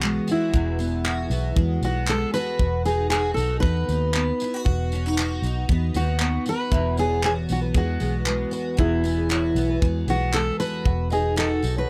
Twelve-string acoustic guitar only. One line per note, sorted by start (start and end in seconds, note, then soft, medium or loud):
0.00 0.53 E2 medium
0.00 1.56 G#3 medium
0.00 0.78 B3 medium
0.00 0.27 F#4 medium
0.27 1.04 F#4 medium
0.54 2.60 E2 medium
0.79 1.30 B3 medium
1.04 2.35 F#4 medium
1.31 1.83 B3 medium
1.57 2.08 G#3 medium
1.83 2.86 B3 medium
2.10 2.65 G#3 medium
2.35 3.12 F#4 medium
2.86 3.37 D#4 medium
3.12 4.41 F#4 medium
3.38 3.89 D#4 medium
3.63 4.14 B3 medium
3.90 4.92 D#4 medium
4.15 5.69 B3 medium
4.42 4.54 E4 medium
4.54 5.18 F#4 medium
4.93 5.06 C#4 medium
5.06 5.43 D#4 medium
5.19 6.46 F#4 medium
5.44 5.94 D#4 medium
5.70 6.20 B3 medium
5.95 6.78 D#4 medium
6.21 6.98 B3 medium
6.46 7.23 F#4 medium
6.73 8.76 E2 medium
6.98 7.49 B3 medium
7.24 8.51 F#4 medium
7.49 8.00 B3 medium
7.75 8.24 G#3 medium
8.00 9.03 B3 medium
8.25 9.81 G#3 medium
8.51 9.29 F#4 medium
8.77 10.85 E2 medium
9.04 9.56 B3 medium
9.29 10.60 F#4 medium
9.56 10.08 B3 medium
9.83 10.32 G#3 medium
10.08 11.10 B3 medium
10.33 10.90 G#3 medium
10.60 11.36 F#4 medium
11.10 11.61 D#4 medium
11.36 11.90 F#4 medium
11.63 11.90 D#4 medium